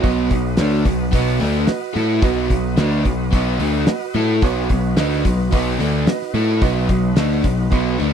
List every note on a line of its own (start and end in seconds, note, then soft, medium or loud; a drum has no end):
0.01 0.29 B1 loud
0.01 0.30 B2 loud
0.01 0.31 F#3 medium
0.01 0.46 F#4 loud
0.01 4.38 F#4 medium
0.01 0.46 B4 medium
0.01 4.38 B4 medium
0.01 0.47 D#5 loud
0.01 4.38 D#5 medium
0.01 kick loud
0.01 open hi-hat medium
0.05 0.31 B3 loud
0.30 0.57 B1 medium
0.30 0.53 B2 medium
0.30 0.53 F#3 medium
0.30 kick medium
0.30 open hi-hat medium
0.57 0.84 D2 loud
0.57 0.86 D3 medium
0.57 0.86 A3 loud
0.57 1.01 F#4 medium
0.57 1.02 B4 medium
0.57 1.03 C#5 medium
0.57 snare loud
0.57 open hi-hat medium
0.61 0.86 D4 loud
0.85 1.11 B1 medium
0.85 1.08 B2 medium
0.85 1.08 F#3 medium
0.85 kick medium
0.85 open hi-hat medium
1.12 1.39 B1 medium
1.12 1.40 B2 loud
1.12 1.41 F#3 loud
1.12 1.41 B3 loud
1.12 1.56 F#4 medium
1.12 1.57 B4 medium
1.12 1.58 D#5 loud
1.12 kick loud
1.12 open hi-hat medium
1.40 1.67 D2 loud
1.40 1.67 D3 medium
1.40 1.68 A3 medium
1.40 1.68 D4 medium
1.40 open hi-hat medium
1.67 2.11 F#4 loud
1.67 2.11 B4 medium
1.67 2.12 D#5 loud
1.67 muted overdriven electric guitar stroke medium
1.67 muted distorted electric guitar stroke medium
1.67 snare loud
1.67 open hi-hat medium
1.95 2.21 A2 medium
1.95 2.22 A3 medium
1.95 2.22 E4 loud
1.95 2.23 A4 loud
1.95 open hi-hat medium
2.21 2.48 B1 loud
2.21 2.49 B2 loud
2.21 2.50 F#3 loud
2.21 2.50 B3 loud
2.21 2.67 F#4 medium
2.21 2.67 B4 medium
2.21 2.67 D#5 loud
2.21 kick loud
2.21 open hi-hat medium
2.50 2.76 B1 medium
2.50 2.73 B2 medium
2.50 2.73 F#3 medium
2.50 kick medium
2.50 open hi-hat medium
2.77 3.03 D2 loud
2.77 3.05 D3 loud
2.77 3.05 A3 medium
2.77 3.05 D4 loud
2.77 3.22 F#4 medium
2.77 3.22 B4 medium
2.77 3.22 D#5 medium
2.77 snare loud
2.77 open hi-hat medium
3.05 3.31 B1 medium
3.05 3.27 B2 medium
3.05 3.27 F#3 medium
3.05 kick medium
3.05 open hi-hat medium
3.32 3.58 B1 medium
3.32 3.59 B2 loud
3.32 3.59 F#3 loud
3.32 3.59 B3 loud
3.32 3.77 F#4 medium
3.32 3.77 B4 medium
3.32 3.77 D#5 loud
3.32 kick medium
3.32 open hi-hat medium
3.59 3.85 D2 medium
3.59 3.86 D3 medium
3.59 3.87 A3 loud
3.59 3.87 D4 medium
3.59 open hi-hat medium
3.86 4.31 F#4 loud
3.86 4.31 B4 medium
3.86 4.31 D#5 loud
3.86 muted overdriven electric guitar stroke medium
3.86 muted picked electric bass stroke soft
3.86 muted distorted electric guitar stroke medium
3.86 snare loud
3.86 open hi-hat medium
4.14 4.40 A2 loud
4.14 4.41 A3 loud
4.14 4.42 E4 loud
4.14 4.42 A4 loud
4.14 open hi-hat medium
4.42 4.68 B1 medium
4.42 4.69 B2 loud
4.42 4.69 F#3 loud
4.42 4.69 B3 loud
4.42 8.13 D#4 medium
4.42 4.86 F#4 loud
4.42 8.13 F#4 medium
4.42 4.87 B4 medium
4.42 8.13 B4 medium
4.42 4.87 C#5 loud
4.42 kick loud
4.42 open hi-hat medium
4.69 4.95 B1 medium
4.69 4.92 B2 medium
4.69 4.92 F#3 medium
4.69 kick medium
4.69 open hi-hat medium
4.97 5.22 D2 loud
4.97 5.24 D3 loud
4.97 5.24 A3 loud
4.97 5.24 D4 loud
4.97 5.41 F#4 medium
4.97 5.41 B4 medium
4.97 5.42 D#5 loud
4.97 snare loud
4.97 open hi-hat medium
5.25 5.50 B1 medium
5.25 5.47 B2 medium
5.25 5.47 F#3 medium
5.25 kick medium
5.25 open hi-hat medium
5.50 5.78 B1 medium
5.50 5.79 B2 loud
5.50 5.79 F#3 loud
5.50 5.95 F#4 medium
5.50 5.96 B4 medium
5.50 5.96 D#5 loud
5.50 kick loud
5.50 open hi-hat loud
5.54 5.79 B3 loud
5.79 6.05 D2 loud
5.79 6.06 D3 medium
5.79 6.06 A3 loud
5.79 6.06 D4 loud
5.79 open hi-hat medium
6.07 6.51 F#4 medium
6.07 6.51 B4 medium
6.07 6.52 D#5 loud
6.07 muted picked electric bass stroke soft
6.07 muted distorted electric guitar stroke medium
6.07 muted overdriven electric guitar stroke medium
6.07 snare loud
6.07 open hi-hat medium
6.22 snare soft
6.34 6.59 A2 medium
6.34 6.61 A3 medium
6.34 6.61 E4 loud
6.34 6.61 A4 loud
6.34 open hi-hat medium
6.61 6.87 B1 loud
6.61 6.88 B2 loud
6.61 6.88 F#3 loud
6.61 6.89 B3 loud
6.61 7.05 F#4 loud
6.61 7.05 B4 loud
6.61 7.06 D#5 loud
6.61 kick loud
6.61 open hi-hat medium
6.88 7.15 B1 medium
6.88 7.11 B2 medium
6.88 7.11 F#3 medium
6.88 kick medium
6.88 open hi-hat medium
7.16 7.42 D2 loud
7.16 7.43 D3 loud
7.16 7.43 A3 loud
7.16 7.44 D4 loud
7.16 7.60 F#4 medium
7.16 7.60 B4 medium
7.16 7.60 D#5 loud
7.16 snare loud
7.16 open hi-hat medium
7.43 7.70 B1 medium
7.43 7.65 B2 medium
7.43 7.65 F#3 medium
7.43 kick medium
7.43 open hi-hat medium
7.70 7.97 B1 loud
7.70 7.98 B2 loud
7.70 7.98 F#3 loud
7.70 7.99 B3 loud
7.70 8.13 F#4 medium
7.70 8.13 B4 medium
7.70 8.13 D#5 loud
7.70 kick loud
7.70 open hi-hat medium
7.98 8.13 D2 loud
7.98 8.13 D3 medium
7.98 8.13 A3 loud
7.98 8.13 D4 medium
7.98 open hi-hat medium